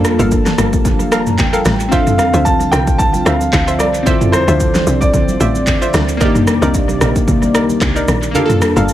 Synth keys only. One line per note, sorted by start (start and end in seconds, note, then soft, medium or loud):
0.00 1.86 A#3 medium
0.00 1.88 D4 medium
0.00 1.89 F4 medium
0.00 1.90 A4 medium
1.12 1.37 A#5 medium
1.39 1.88 G5 medium
1.88 4.01 C4 medium
1.88 4.02 D4 medium
1.94 4.03 F4 medium
1.94 4.04 A4 medium
4.03 6.15 C4 medium
4.03 6.16 E4 medium
4.08 6.17 F4 medium
4.08 6.19 A4 medium
6.17 8.29 A#3 medium
6.17 8.30 D4 medium
6.22 8.32 D#4 medium
6.22 8.33 G4 medium
8.31 8.93 A#3 medium
8.31 8.93 D4 medium
8.36 8.93 F4 medium
8.36 8.44 G4 medium
8.45 8.93 A4 medium